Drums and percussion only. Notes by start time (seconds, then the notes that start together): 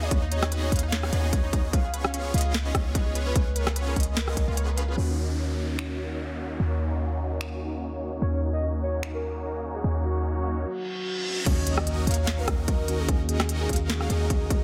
0.11 kick, closed hi-hat
0.32 closed hi-hat
0.43 cross-stick, snare
0.52 closed hi-hat
0.72 kick, closed hi-hat
0.76 closed hi-hat
0.79 closed hi-hat
0.92 snare, closed hi-hat
1.03 cross-stick
1.13 closed hi-hat
1.33 kick, closed hi-hat
1.53 kick, closed hi-hat
1.73 kick, closed hi-hat
1.94 closed hi-hat
2.05 cross-stick
2.14 closed hi-hat
2.34 closed hi-hat
2.38 closed hi-hat
2.41 closed hi-hat
2.54 snare, closed hi-hat
2.75 kick, cross-stick, closed hi-hat
2.95 kick, closed hi-hat
3.15 closed hi-hat
3.36 kick, closed hi-hat
3.56 closed hi-hat
3.67 cross-stick, snare
3.76 closed hi-hat
3.96 kick, closed hi-hat
4.00 closed hi-hat
4.03 closed hi-hat
4.17 snare, closed hi-hat
4.28 cross-stick
4.37 kick, closed hi-hat
4.57 closed hi-hat
4.78 closed hi-hat
5.79 finger snap
7.41 finger snap
9.03 finger snap
11.46 kick, closed hi-hat, crash
11.67 closed hi-hat
11.78 cross-stick
11.87 closed hi-hat
12.07 closed hi-hat
12.11 closed hi-hat
12.14 closed hi-hat
12.27 snare, closed hi-hat
12.48 kick, cross-stick, closed hi-hat
12.68 kick, closed hi-hat
12.88 closed hi-hat
13.09 kick, closed hi-hat
13.29 closed hi-hat
13.40 cross-stick, snare
13.49 closed hi-hat
13.69 kick, closed hi-hat
13.73 closed hi-hat
13.76 closed hi-hat
13.90 snare, closed hi-hat
14.01 cross-stick
14.10 closed hi-hat
14.30 kick, closed hi-hat
14.50 kick, closed hi-hat